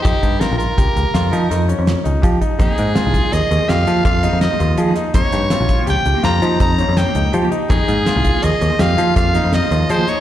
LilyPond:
<<
  \new Staff \with { instrumentName = "Soprano saxophone" } { \time 7/4 \key f \minor \tempo 4 = 165 g'4 bes'8 bes'2. r2 r8 | aes'2 ees''4 f''4 f''4 ees''4 r4 | des''2 g''4 bes''4 bes''4 g''4 r4 | aes'2 ees''4 f''4 f''4 ees''4 c''8 des''8 | }
  \new Staff \with { instrumentName = "Grand piano" } { \time 7/4 \key f \minor ees'4 f'8 f'8 g'4 f'8 ees'8 ees'8 des'4 ees'8 g'8 ees'8 | ees'4 f'8 f'8 aes'4 g'8 f'8 f'8 ees'4 f'8 aes'8 ees'8 | ees'4 f'8 f'8 g'4 f'8 ees'8 ees'8 des'4 ees'8 g'8 ees'8 | ees'4 f'8 f'8 aes'4 g'8 f'8 f'8 ees'4 f'8 aes'8 ees'8 | }
  \new Staff \with { instrumentName = "Hollow-body jazz guitar" } { \time 7/4 \key f \minor r1. r4 | <f bes ees' aes'>8. r16 <f bes ees' aes'>8 r16 <f bes ees' aes'>8. r16 <f bes ees' aes'>8 r16 <f bes ees' aes'>8. r16 <f bes ees' aes'>8 r16 <f bes ees' aes'>8. r16 <f bes ees' aes'>8 r16 | <f bes ees' g'>8. r16 <f bes ees' g'>8 r16 <f bes ees' g'>8. r16 <f bes ees' g'>8 r16 <f bes ees' g'>8. r16 <f bes ees' g'>8 r16 <f bes ees' g'>8. r16 <f bes ees' g'>8 r16 | <f bes ees' aes'>8. r16 <f bes ees' aes'>8 r16 <f bes ees' aes'>8. r16 <f bes ees' aes'>8 r16 <f bes ees' aes'>8. r16 <f bes ees' aes'>8 r16 <f bes ees' aes'>8. r16 <f bes ees' aes'>8 r16 | }
  \new Staff \with { instrumentName = "Picked electric bass" } { \clef bass \time 7/4 \key f \minor f,16 r16 g,8. bes,,8 r16 des,16 r16 des,16 r16 f,8 f8 f,8. f,8 r16 des,8 f8 r8 | f,16 r16 aes,8. c,8 r16 ees,16 r16 ees,16 r16 f,8 f8 f,8. f,8 r16 ees,8 f8 r8 | f,16 r16 g,8. bes,,8 r16 des,16 r16 des,16 r16 f,8 f8 f,8. f,8 r16 des,8 f8 r8 | f,16 r16 aes,8. c,8 r16 ees,16 r16 ees,16 r16 f,8 f8 f,8. f,8 r16 ees,8 f8 r8 | }
  \new DrumStaff \with { instrumentName = "Drums" } \drummode { \time 7/4 <hh bd>8 <hh bd>8 <hh sn>8 hh8 <hh bd>8 hh8 <hh sn>8 hh8 <hh sn>8 hh8 <hh sn>8 hh8 <hh bd>8 <hh bd>8 | <hh bd>8 hh8 <hh sn>8 <hh bd>8 hh8 hh8 <hh sn>8 hh8 <hh bd>8 hh8 <hh sn>8 hh8 hh8 <hh sn>8 | <hh bd>8 <hh sn>8 <hh sn>8 <hh bd>8 hh8 hh8 <hh sn>8 hh8 <hh bd>8 hh8 <hh sn>8 hh8 hh8 hh8 | <hh bd>8 hh8 <hh sn>8 <hh bd>8 hh8 hh8 <hh sn>8 <hh sn>8 <hh bd>8 hh8 <hh sn>8 hh8 <hh sn>8 hh8 | }
>>